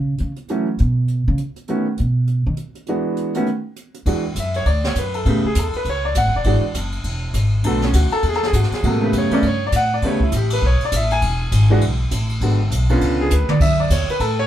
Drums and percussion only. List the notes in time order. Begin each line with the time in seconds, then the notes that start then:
0.18 closed hi-hat
0.36 closed hi-hat
0.48 closed hi-hat
0.78 closed hi-hat
1.08 closed hi-hat
1.38 closed hi-hat
1.56 closed hi-hat
1.68 closed hi-hat
1.97 closed hi-hat
2.27 closed hi-hat
2.57 closed hi-hat
2.75 closed hi-hat
2.86 closed hi-hat
3.17 closed hi-hat
3.34 closed hi-hat
3.46 closed hi-hat
3.76 closed hi-hat
3.94 closed hi-hat
4.06 kick, ride
4.36 kick, hi-hat pedal, ride
4.54 ride
4.66 kick, ride
4.84 snare
4.95 kick, hi-hat pedal, ride
5.14 ride
5.25 kick, ride
5.55 kick, hi-hat pedal, ride
5.73 ride
5.85 kick, ride
6.15 kick, hi-hat pedal, ride
6.44 kick, ride
6.74 kick, hi-hat pedal, ride
6.92 ride
7.04 kick, ride
7.34 kick, hi-hat pedal, ride
7.63 kick, ride
7.82 snare
7.93 kick, hi-hat pedal, ride
8.11 ride
8.23 kick, ride
8.33 snare
8.43 snare
8.53 kick, hi-hat pedal, ride
8.63 snare
8.72 snare, ride
8.83 kick, ride
9.13 kick, hi-hat pedal, ride
9.31 ride
9.42 kick, ride
9.72 kick, hi-hat pedal, ride
10.02 kick, ride
10.20 kick
10.32 kick, hi-hat pedal, ride
10.50 ride
10.62 kick
10.81 ride
10.92 kick, hi-hat pedal, ride
11.10 ride
11.22 kick, ride
11.52 kick, hi-hat pedal, ride
11.81 kick, ride
12.11 kick, hi-hat pedal, ride
12.29 ride
12.41 kick, ride
12.71 kick, hi-hat pedal, ride
12.89 ride
13.01 kick, ride
13.30 hi-hat pedal
13.49 mid tom
13.60 kick, crash
13.90 kick, hi-hat pedal, ride
14.09 ride
14.20 kick, ride